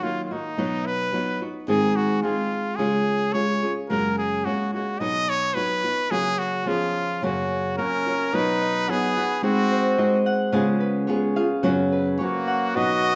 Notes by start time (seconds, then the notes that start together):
Already playing: D#3
0.02 F#3 A#3 D#4 F4 F#4
0.24 F4
0.31 A#3 D#4 F#4
0.57 B2 F#3 B3 D#4 F#4
0.86 B4
1.13 F#3 B3 D#4 F#4
1.42 B3 D#4 F#4
1.68 G#2 D#3 G#3 C4 D#4 G#4
1.96 F#4
2.23 G#3 C4 D#4 F4 G#4
2.76 C#3 G#3 C#4 F4 G#4
2.80 G#4
3.33 G#3 C#4 F4 G#4 C#5
3.63 C#4 F4 G#4
3.89 F#2 C#3 G#3 A#3 C#4 F#4 A#4
4.18 G#4
4.45 G#3 A#3 C#4 F#4
4.74 G#3 A#3 C#4 F#4
5.00 B2 F#3 B3 D#4 F#4 D#5
5.29 C#5
5.54 F#3 B3 D#4 F#4 B4
5.84 B3 D#4 F#4
6.11 C#3 F#3 A#3 C#4 F#4 G#4
6.38 F#4
6.66 F3 B3 C#4 F4 G#4
7.22 F#2 C#3 F#3 A#3 C#4 F#4
7.77 F#3 A#3 C#4 F#4 A#4
8.06 F#3 A#3 C#4 F#4
8.33 B2 F#3 B3 D#4 F#4 B4
8.62 D#5
8.88 F#3 B3 D#4 F#4 G#4 F#5
9.16 B3 D#4 F#4 B5
9.42 G#3 C4 D#4 F#4 G#4
9.71 C5
9.98 G#3 C4 D#4 F#4 D#5
10.26 F#5
10.52 C#3 G#3 B3 C#4 F4 G#4
10.80 B4
11.07 G#3 B3 F4 G#4 C#5
11.36 B3 F4 G#4 F5
11.63 F#2 C#3 F#3 B3 C#4 F#4
11.92 B4
12.18 F#3 A#3 C#4 F#4 C#5
12.48 F#5
12.75 B2 F#3 B3 D#4 F#4 B4 D#5
13.04 D#5